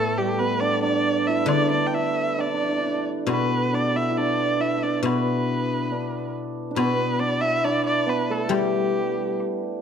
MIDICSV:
0, 0, Header, 1, 5, 480
1, 0, Start_track
1, 0, Tempo, 890208
1, 801, Time_signature, 2, 2, 24, 8
1, 2249, Tempo, 867052
1, 4649, Tempo, 892857
1, 5353, End_track
2, 0, Start_track
2, 0, Title_t, "Erhu"
2, 0, Program_c, 0, 110
2, 0, Note_on_c, 0, 69, 94
2, 97, Note_on_c, 0, 67, 77
2, 105, Note_off_c, 0, 69, 0
2, 209, Note_on_c, 0, 71, 81
2, 218, Note_off_c, 0, 67, 0
2, 324, Note_on_c, 0, 74, 86
2, 332, Note_off_c, 0, 71, 0
2, 443, Note_off_c, 0, 74, 0
2, 450, Note_on_c, 0, 74, 84
2, 683, Note_on_c, 0, 76, 80
2, 691, Note_off_c, 0, 74, 0
2, 796, Note_on_c, 0, 74, 92
2, 804, Note_off_c, 0, 76, 0
2, 919, Note_off_c, 0, 74, 0
2, 923, Note_on_c, 0, 74, 86
2, 1007, Note_on_c, 0, 79, 65
2, 1015, Note_off_c, 0, 74, 0
2, 1049, Note_on_c, 0, 76, 83
2, 1058, Note_off_c, 0, 79, 0
2, 1296, Note_on_c, 0, 74, 80
2, 1304, Note_off_c, 0, 76, 0
2, 1654, Note_off_c, 0, 74, 0
2, 1786, Note_on_c, 0, 71, 86
2, 2018, Note_on_c, 0, 74, 83
2, 2026, Note_off_c, 0, 71, 0
2, 2137, Note_on_c, 0, 76, 81
2, 2145, Note_off_c, 0, 74, 0
2, 2203, Note_off_c, 0, 76, 0
2, 2203, Note_on_c, 0, 76, 60
2, 2250, Note_on_c, 0, 74, 84
2, 2259, Note_off_c, 0, 76, 0
2, 2489, Note_on_c, 0, 76, 73
2, 2498, Note_off_c, 0, 74, 0
2, 2613, Note_on_c, 0, 74, 70
2, 2621, Note_off_c, 0, 76, 0
2, 2734, Note_off_c, 0, 74, 0
2, 2737, Note_on_c, 0, 71, 75
2, 3434, Note_off_c, 0, 71, 0
2, 3686, Note_on_c, 0, 71, 85
2, 3924, Note_on_c, 0, 74, 90
2, 3932, Note_off_c, 0, 71, 0
2, 4042, Note_on_c, 0, 76, 94
2, 4050, Note_off_c, 0, 74, 0
2, 4172, Note_on_c, 0, 74, 90
2, 4180, Note_off_c, 0, 76, 0
2, 4289, Note_off_c, 0, 74, 0
2, 4293, Note_on_c, 0, 74, 85
2, 4422, Note_on_c, 0, 71, 76
2, 4431, Note_off_c, 0, 74, 0
2, 4540, Note_on_c, 0, 69, 69
2, 4548, Note_off_c, 0, 71, 0
2, 4664, Note_on_c, 0, 67, 69
2, 4672, Note_off_c, 0, 69, 0
2, 5135, Note_off_c, 0, 67, 0
2, 5353, End_track
3, 0, Start_track
3, 0, Title_t, "Hammered dulcimer"
3, 0, Program_c, 1, 15
3, 0, Note_on_c, 1, 57, 84
3, 0, Note_on_c, 1, 59, 68
3, 0, Note_on_c, 1, 62, 79
3, 0, Note_on_c, 1, 64, 71
3, 98, Note_on_c, 1, 55, 59
3, 197, Note_off_c, 1, 64, 0
3, 209, Note_off_c, 1, 59, 0
3, 211, Note_on_c, 1, 59, 62
3, 328, Note_off_c, 1, 62, 0
3, 330, Note_on_c, 1, 62, 84
3, 443, Note_off_c, 1, 62, 0
3, 445, Note_on_c, 1, 62, 65
3, 693, Note_on_c, 1, 64, 78
3, 806, Note_off_c, 1, 62, 0
3, 808, Note_on_c, 1, 62, 85
3, 921, Note_off_c, 1, 62, 0
3, 923, Note_on_c, 1, 62, 72
3, 1042, Note_off_c, 1, 64, 0
3, 1044, Note_on_c, 1, 64, 70
3, 1283, Note_off_c, 1, 62, 0
3, 1285, Note_on_c, 1, 62, 68
3, 1327, Note_off_c, 1, 62, 0
3, 1330, Note_on_c, 1, 62, 52
3, 1368, Note_off_c, 1, 62, 0
3, 1370, Note_on_c, 1, 62, 59
3, 1414, Note_off_c, 1, 62, 0
3, 1416, Note_on_c, 1, 62, 48
3, 1448, Note_off_c, 1, 62, 0
3, 1450, Note_on_c, 1, 62, 51
3, 1498, Note_off_c, 1, 62, 0
3, 1500, Note_on_c, 1, 62, 50
3, 1539, Note_off_c, 1, 62, 0
3, 1541, Note_on_c, 1, 62, 52
3, 1583, Note_off_c, 1, 62, 0
3, 1585, Note_on_c, 1, 62, 50
3, 1769, Note_off_c, 1, 59, 0
3, 1771, Note_on_c, 1, 59, 71
3, 2010, Note_off_c, 1, 62, 0
3, 2012, Note_on_c, 1, 62, 61
3, 2130, Note_off_c, 1, 64, 0
3, 2133, Note_on_c, 1, 64, 64
3, 2210, Note_off_c, 1, 64, 0
3, 2213, Note_on_c, 1, 64, 49
3, 2244, Note_off_c, 1, 57, 0
3, 2251, Note_off_c, 1, 62, 0
3, 2253, Note_on_c, 1, 62, 70
3, 2483, Note_off_c, 1, 64, 0
3, 2486, Note_on_c, 1, 64, 60
3, 2581, Note_off_c, 1, 64, 0
3, 2614, Note_off_c, 1, 62, 0
3, 2617, Note_on_c, 1, 62, 67
3, 2674, Note_off_c, 1, 55, 0
3, 2736, Note_off_c, 1, 59, 0
3, 2738, Note_on_c, 1, 59, 74
3, 3214, Note_off_c, 1, 62, 0
3, 3216, Note_on_c, 1, 62, 64
3, 3652, Note_off_c, 1, 62, 0
3, 3654, Note_on_c, 1, 62, 55
3, 3691, Note_off_c, 1, 59, 0
3, 3693, Note_on_c, 1, 59, 85
3, 3927, Note_off_c, 1, 62, 0
3, 3929, Note_on_c, 1, 62, 66
3, 4046, Note_on_c, 1, 64, 73
3, 4169, Note_off_c, 1, 62, 0
3, 4172, Note_on_c, 1, 62, 87
3, 4402, Note_off_c, 1, 59, 0
3, 4404, Note_on_c, 1, 59, 66
3, 4532, Note_on_c, 1, 57, 64
3, 4616, Note_off_c, 1, 57, 0
3, 4618, Note_on_c, 1, 57, 47
3, 4650, Note_on_c, 1, 55, 64
3, 5353, Note_off_c, 1, 55, 0
3, 5353, Note_off_c, 1, 57, 0
3, 5353, Note_off_c, 1, 59, 0
3, 5353, Note_off_c, 1, 62, 0
3, 5353, Note_off_c, 1, 64, 0
3, 5353, End_track
4, 0, Start_track
4, 0, Title_t, "Guzheng"
4, 0, Program_c, 2, 107
4, 0, Note_on_c, 2, 45, 53
4, 786, Note_on_c, 2, 50, 56
4, 798, Note_off_c, 2, 45, 0
4, 1761, Note_on_c, 2, 47, 52
4, 2243, Note_off_c, 2, 50, 0
4, 2716, Note_off_c, 2, 47, 0
4, 2722, Note_on_c, 2, 47, 54
4, 3678, Note_off_c, 2, 47, 0
4, 3684, Note_on_c, 2, 47, 53
4, 4640, Note_on_c, 2, 55, 58
4, 5124, Note_off_c, 2, 47, 0
4, 5353, Note_off_c, 2, 55, 0
4, 5353, End_track
5, 0, Start_track
5, 0, Title_t, "Drums"
5, 801, Note_on_c, 9, 76, 64
5, 855, Note_off_c, 9, 76, 0
5, 1286, Note_on_c, 9, 77, 34
5, 1340, Note_off_c, 9, 77, 0
5, 1767, Note_on_c, 9, 76, 48
5, 1821, Note_off_c, 9, 76, 0
5, 2739, Note_on_c, 9, 76, 51
5, 2794, Note_off_c, 9, 76, 0
5, 3690, Note_on_c, 9, 76, 62
5, 3746, Note_off_c, 9, 76, 0
5, 4650, Note_on_c, 9, 76, 52
5, 4704, Note_off_c, 9, 76, 0
5, 5130, Note_on_c, 9, 77, 32
5, 5184, Note_off_c, 9, 77, 0
5, 5353, End_track
0, 0, End_of_file